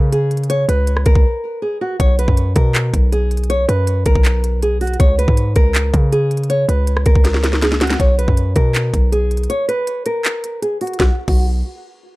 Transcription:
0.00 0.66 C#3 loud
0.12 0.48 G#4 medium
0.12 closed hi-hat medium
0.31 closed hi-hat soft
0.37 closed hi-hat soft
0.44 closed hi-hat soft
0.50 0.64 C#5 loud
0.50 closed hi-hat medium
0.69 1.05 C#2 loud
0.69 1.04 B4 medium
0.69 closed hi-hat loud
0.87 closed hi-hat medium
0.97 cross-stick medium
1.06 1.15 C#2 loud
1.06 1.59 A#4 medium
1.06 kick loud
1.06 closed hi-hat medium
1.15 1.24 C#2 loud
1.15 kick loud
1.62 1.77 G#4 medium
1.81 1.96 F#4 medium
2.00 2.27 B1 loud
2.00 2.14 C#5 loud
2.00 kick loud
2.00 closed hi-hat medium
2.19 2.54 B4 medium
2.19 closed hi-hat medium
2.28 2.55 F#2 loud
2.28 kick medium
2.37 closed hi-hat medium
2.56 2.92 B2 loud
2.56 3.09 A#4 medium
2.56 kick loud
2.56 closed hi-hat medium
2.75 clap loud
2.75 closed hi-hat medium
2.94 3.66 B1 loud
2.94 kick loud
2.94 closed hi-hat medium
3.12 3.48 G#4 medium
3.12 closed hi-hat medium
3.31 closed hi-hat soft
3.37 closed hi-hat soft
3.44 closed hi-hat soft
3.50 3.64 C#5 loud
3.50 closed hi-hat medium
3.69 4.05 F#2 loud
3.69 4.04 B4 medium
3.69 closed hi-hat loud
3.87 closed hi-hat medium
4.06 4.15 B1 loud
4.06 4.59 A#4 medium
4.06 kick loud
4.06 closed hi-hat medium
4.15 4.96 B1 loud
4.15 kick loud
4.25 clap loud
4.25 closed hi-hat medium
4.44 closed hi-hat medium
4.63 4.77 G#4 medium
4.63 closed hi-hat medium
4.81 4.95 F#4 medium
4.81 closed hi-hat soft
4.81 open hi-hat soft
4.87 closed hi-hat soft
4.94 closed hi-hat soft
5.00 5.27 C#2 loud
5.00 5.14 C#5 loud
5.00 kick loud
5.00 closed hi-hat medium
5.18 5.54 B4 medium
5.18 closed hi-hat loud
5.28 5.55 G#2 loud
5.28 kick medium
5.37 closed hi-hat medium
5.56 5.92 C#2 loud
5.56 6.09 A#4 medium
5.56 kick loud
5.56 closed hi-hat medium
5.75 clap loud
5.75 closed hi-hat medium
5.94 6.66 C#3 loud
5.94 kick loud
5.94 closed hi-hat medium
6.12 6.48 G#4 medium
6.12 closed hi-hat medium
6.31 closed hi-hat soft
6.37 closed hi-hat soft
6.44 closed hi-hat soft
6.50 6.64 C#5 loud
6.50 closed hi-hat medium
6.69 7.05 C#2 loud
6.69 7.04 B4 medium
6.69 closed hi-hat medium
6.87 closed hi-hat medium
6.97 cross-stick loud
7.06 7.15 C#2 loud
7.06 7.59 A#4 medium
7.06 kick loud
7.06 closed hi-hat medium
7.15 7.96 C#2 loud
7.15 kick loud
7.25 snare medium
7.25 closed hi-hat medium
7.34 snare medium
7.44 snare medium
7.44 closed hi-hat medium
7.53 snare medium
7.62 7.77 G#4 medium
7.62 snare medium
7.62 closed hi-hat medium
7.72 snare medium
7.81 7.96 F#4 medium
7.81 snare loud
7.81 closed hi-hat medium
7.87 snare loud
7.87 closed hi-hat soft
7.94 closed hi-hat soft
8.00 8.27 B1 loud
8.00 8.14 C#5 medium
8.00 kick loud
8.00 closed hi-hat medium
8.18 8.54 B4 medium
8.18 closed hi-hat medium
8.28 8.55 F#2 loud
8.28 kick medium
8.37 closed hi-hat medium
8.56 8.92 B2 loud
8.56 9.09 A#4 medium
8.56 kick medium
8.56 closed hi-hat medium
8.75 clap loud
8.75 closed hi-hat medium
8.94 9.48 B1 loud
8.94 kick medium
8.94 closed hi-hat medium
9.12 9.47 G#4 medium
9.12 closed hi-hat medium
9.31 closed hi-hat soft
9.37 closed hi-hat soft
9.44 closed hi-hat soft
9.50 9.64 C#5 loud
9.50 closed hi-hat medium
9.68 10.04 B4 medium
9.68 closed hi-hat medium
9.87 closed hi-hat medium
10.06 10.59 A#4 medium
10.06 closed hi-hat medium
10.25 clap loud
10.25 closed hi-hat medium
10.44 closed hi-hat medium
10.62 10.77 G#4 medium
10.62 closed hi-hat medium
10.81 10.96 F#4 medium
10.81 closed hi-hat soft
10.81 open hi-hat soft
10.87 closed hi-hat soft
10.94 closed hi-hat soft
11.00 11.10 B1 loud
11.00 11.10 F#4 medium
11.00 kick loud
11.00 snare medium
11.28 11.63 B1 loud
11.28 11.45 F#4 medium
11.28 kick loud
11.28 crash medium

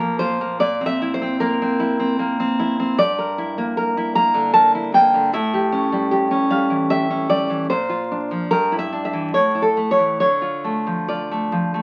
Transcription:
0.00 0.57 A#2 medium
0.00 0.60 F3 medium
0.00 0.40 A#3 medium
0.00 0.19 F4 medium
0.00 0.18 A#4 medium
0.19 0.61 F4 medium
0.19 0.58 C5 loud
0.41 0.61 A#3 medium
0.60 2.94 A#2 medium
0.60 0.86 D5 loud
0.81 1.20 C4 medium
0.86 1.12 E5 loud
1.02 1.78 E4 medium
1.14 1.39 C5 medium
1.22 1.61 C4 medium
1.40 2.18 A#3 medium
1.40 2.15 A#4 medium
1.62 1.98 C4 medium
1.80 2.58 E4 medium
1.99 2.39 C4 medium
2.19 2.98 A#3 medium
2.40 2.78 C4 medium
2.59 2.98 E4 medium
2.80 2.99 C4 medium
2.98 5.30 G2 medium
2.98 4.12 D5 loud
3.19 3.76 A#4 medium
3.38 3.96 E4 medium
3.58 4.15 A#3 medium
3.77 4.15 A#4 medium
3.97 4.74 E4 medium
4.15 4.93 A#3 medium
4.15 4.53 A#5 loud
4.34 5.13 D3 medium
4.54 5.33 A#4 medium
4.54 4.74 A5 loud
4.75 4.94 E4 medium
4.94 5.33 A#3 medium
4.94 5.32 G5 loud
5.14 5.33 D3 medium
5.33 7.66 A2 medium
5.33 6.48 E5 loud
5.54 5.92 G4 medium
5.72 6.30 C#4 medium
5.92 6.49 G3 medium
6.11 6.90 G4 medium
6.31 7.09 C#4 medium
6.50 7.28 G3 medium
6.50 6.89 F5 medium
6.70 7.49 E3 medium
6.90 7.70 G4 medium
6.90 7.28 E5 loud
7.10 7.70 C#4 medium
7.29 7.70 G3 medium
7.29 7.68 D5 loud
7.50 7.70 E3 medium
7.70 8.48 A#2 medium
7.70 8.47 C5 medium
7.89 8.50 F4 medium
8.11 8.51 D4 medium
8.31 8.51 F3 medium
8.51 9.31 G2 medium
8.51 8.77 A#4 medium
8.72 9.34 E4 medium
8.79 9.04 E5 loud
8.92 9.34 D4 medium
9.05 9.32 E5 medium
9.13 9.34 E3 soft
9.34 10.17 A2 medium
9.34 9.61 C#5 medium
9.55 10.19 E4 medium
9.62 9.89 A4 medium
9.77 10.20 A3 medium
9.91 10.19 C#5 medium
9.99 10.20 E3 soft
10.20 11.82 D3 medium
10.20 11.05 C#5 medium
10.42 11.07 F4 soft
10.64 11.30 A3 soft
10.87 11.51 F3 soft
11.08 11.82 F4 soft
11.08 11.82 D5 medium
11.31 11.73 A3 soft
11.52 11.82 F3 soft
11.74 11.82 A3 soft

